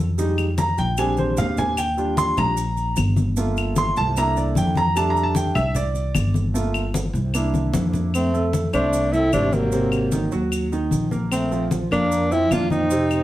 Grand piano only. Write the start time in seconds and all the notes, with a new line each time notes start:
0.18 G3 G#3 D#4
0.58 A#5
0.79 G5
0.98 G3 G#3 C4 D4 G#5
1.18 C5
1.38 F5
1.58 G#5
1.78 G5
1.97 G3 D4 F4
2.18 C6
2.39 A#5
3.37 A3 A#3 F4
3.78 C6
3.97 A5
4.17 A3 A#3 D4 E4 A#5
4.37 D5
4.58 G5
4.77 A#5
4.96 G3 A3 D4 A5
5.10 A#5
5.23 A5
5.36 G5
5.55 E5
5.76 D5
6.54 A3 A#3 F4
7.34 A#3 D4 E4
8.34 A3 A4
8.74 C4 C5
9.14 A3 A4
9.33 C3 C4
9.72 C3 C4
10.13 D#3 D#4
10.32 F#3 F#4
10.72 D#3 D#4
11.11 A#3 A#4
11.51 F3 F4
11.92 A#3 A#4
12.32 F3 F4
12.52 A#2 A#3
12.91 C3 C4